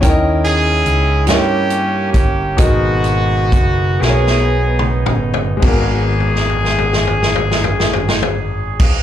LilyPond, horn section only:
\new Staff \with { instrumentName = "Horn section" } { \time 6/8 \key gis \minor \tempo 4. = 40 << { r8 gis'4 g'4 g'8 | fis'4. gis'4 r8 | gis'2. | } \\ { r8 <cis' e'>4 <ais cis'>4. | <ais b>4. <b dis'>4. | r2. | } >> }